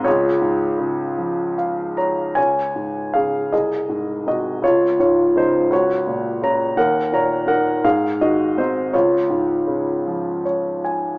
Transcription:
<<
  \new Staff \with { instrumentName = "Grand piano" } { \time 6/8 \key des \major \tempo 4. = 54 <f' aes' des''>2 f''8 <des'' bes''>8 | <des'' aes''>4 <aes' f''>8 <aes' ees''>4 <ges' ees''>8 | <f' des''>8 <f' des''>8 <ees' c''>8 <ges' des''>4 <des'' bes''>8 | <bes' ges''>8 <des'' bes''>8 <bes' ges''>8 <aes' f''>8 <ges' ees''>8 <ees' c''>8 |
<f' des''>2 des''8 aes''8 | }
  \new Staff \with { instrumentName = "Grand piano" } { \clef bass \time 6/8 \key des \major des,8 aes,8 des8 f4. | des,8 aes,8 des8 c,8 aes,8 c8 | des,8 aes,8 des8 des,8 bes,8 des8 | ees,8 bes,8 ees8 aes,8 ees8 c'8 |
des,8 aes,8 des8 f4. | }
>>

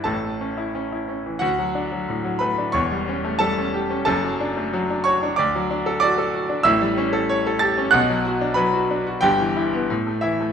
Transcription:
<<
  \new Staff \with { instrumentName = "Grand piano" } { \time 2/4 \key d \major \tempo 4 = 91 <a' a''>4. r8 | <fis' fis''>4. <b' b''>8 | <cis'' cis'''>4 <a' a''>4 | <a' a''>4. <cis'' cis'''>8 |
<d'' d'''>4 <d'' d'''>4 | <e'' e'''>4. <a'' a'''>8 | <fis'' fis'''>4 <b' b''>8 r8 | <g' g''>4. <e' e''>8 | }
  \new Staff \with { instrumentName = "Grand piano" } { \time 2/4 \key d \major <a,, a,>16 a16 cis'16 e'16 cis'16 e'16 cis'16 e16 | d,16 fis16 d'16 fis16 a,16 fis16 a16 d'16 | <e,, e,>16 g16 cis'16 a16 g16 cis'16 g'16 cis'16 | <fis,, fis,>16 fis16 d'16 a16 fis16 d'16 fis'16 d'16 |
d,16 fis16 d'16 a'16 fis'16 a'16 fis'16 d'16 | <a,, a,>16 g16 cis'16 a'16 cis''16 a'16 g'16 cis'16 | <b,, b,>16 fis16 fis'16 d'16 fis16 fis'16 d'16 fis'16 | <g,, g,>16 e16 e'16 b16 a,16 a16 e16 a16 | }
>>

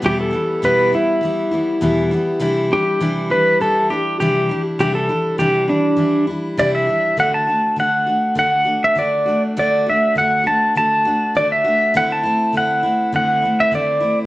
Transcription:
<<
  \new Staff \with { instrumentName = "Pedal steel guitar" } { \time 4/4 \key d \mixolydian \tempo 4 = 101 g'16 a'8. b'8 e'2 r8 | r8 g'4 b'8 a'8 g'8 g'8. r16 | g'16 a'8. g'8 d'4 r8 d''16 e''8. | fis''16 a''8. fis''4 fis''8. e''16 d''8. r16 |
d''8 e''8 fis''8 a''8 a''4 d''16 e''8. | fis''16 a''8. fis''4 fis''8. e''16 d''8. r16 | }
  \new Staff \with { instrumentName = "Steel-string acoustic guitar" } { \time 4/4 \key d \mixolydian <e, b, e g b e'>8 <e g b e'>8 <e, b, e g b e'>8 <e g b e'>8 <e g b e'>8 <e g b e'>8 <e, b, e g b e'>8 <e g b e'>8 | <c e g d' e'>8 <g d' e'>8 <c e g d' e'>8 <g d' e'>8 <e g d' e'>8 <g d' e'>8 <c e g d' e'>8 <g d' e'>8 | <c e g d' e'>8 <g d' e'>8 <c e g d' e'>8 <g d' e'>8 <e g d' e'>8 <g d' e'>8 <c e g d' e'>8 <g d' e'>8 | <d a d' fis'>8 <a d' fis'>8 <d a d' fis'>8 <a d' fis'>8 <d a d' fis'>8 <a d' fis'>8 <d a d' fis'>8 <a d' fis'>8 |
<d a d' fis'>8 <a d' fis'>8 <d a d' fis'>8 <a d' fis'>8 <d a d' fis'>8 <a d' fis'>8 <d a d' fis'>8 <a d' fis'>8 | <d a c' e'>8 <a c' e'>8 <d a c' e'>8 <a c' e'>8 <d a c' e'>8 <a c' e'>8 <d a c' e'>8 <a c' e'>8 | }
>>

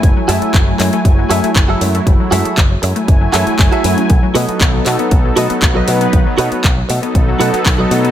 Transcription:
<<
  \new Staff \with { instrumentName = "Clean electric guitar" } { \time 4/4 \key fis \dorian \tempo 4 = 118 r8 <fis' gis' a' e''>8 r4. <fis' gis' a' e''>8 r16 <fis' gis' a' e''>16 r8 | r8 <fis' gis' a' e''>8 r4. <fis' gis' a' e''>8 r16 <fis' gis' a' e''>16 r8 | r8 <fis' a' b' dis''>8 r4. <fis' a' b' dis''>8 r16 <fis' a' b' dis''>16 r8 | r8 <fis' a' b' cis''>8 r4. <fis' a' b' fis''>8 r16 <fis' a' b' dis''>16 r8 | }
  \new Staff \with { instrumentName = "Analog synth pad" } { \time 4/4 \key fis \dorian <fis a e' gis''>16 <fis a e' gis''>4~ <fis a e' gis''>16 <fis a e' gis''>4~ <fis a e' gis''>16 <fis a e'>4~ <fis a e'>16~ | <fis a e'>16 r4 r16 <fis a e' gis''>2~ <fis a e' gis''>8 | r16 <fis b dis' a'>4~ <fis b dis' a'>16 <fis b dis' a'>4~ <fis b dis' a'>16 <fis b dis' b'>4~ <fis b dis' b'>16~ | <fis b dis' b'>16 r4 r16 <fis b dis' a'>2~ <fis b dis' a'>8 | }
  \new Staff \with { instrumentName = "Synth arpeggio sound" } { \clef bass \time 4/4 \key fis \dorian e16 fis16 gis16 a16 e16 fis16 gis16 a16 e16 fis16 gis16 a16 e16 fis16 gis16 a16 | e16 fis16 gis16 a16 e16 fis16 gis16 a16 e16 fis16 e16 fis16 a16 fis16 cis'16 cis'16 | dis16 fis16 a16 b16 dis16 fis16 a16 b16 dis16 fis16 a16 b16 dis16 fis16 a16 b16 | dis16 fis16 a16 b16 dis16 fis16 a16 b16 dis16 fis16 a16 b16 dis16 fis16 a16 b16 | }
  \new Staff \with { instrumentName = "Picked electric bass" } { \clef bass \time 4/4 \key fis \dorian fis,,8 fis,8 fis,,8 fis,8 fis,,8 fis,8 fis,,8 fis,8 | fis,,8 fis,8 fis,,8 fis,8 fis,,8 fis,8 fis,,8 fis,8 | b,,8 b,8 b,,8 b,8 b,,8 b,8 b,,8 b,8 | b,,8 b,8 b,,8 b,8 b,,8 b,8 b,,8 b,8 | }
  \new DrumStaff \with { instrumentName = "Drums" } \drummode { \time 4/4 <hh bd>8 hho16 hh16 <hc hh bd>8 <hc hho>16 hh16 <hh bd>8 hho16 hh16 <hc hh bd>8 hho16 hh16 | <hh bd>8 hho16 hh16 <hc hh bd>8 hho16 hh16 <hh bd>8 <hc hho>16 hh16 <hc hho bd>16 hh16 hho16 hh16 | <hh bd>8 hho16 hh16 <hc hh bd>8 <hc hho>16 hh16 <hh bd>8 hho16 hh16 <hc hh bd>8 hho16 hh16 | <hh bd>8 hho16 hh16 <hc hh bd>8 hho16 hh16 <hh bd>8 hho16 hh16 <hc hho bd>8 hho16 hh16 | }
>>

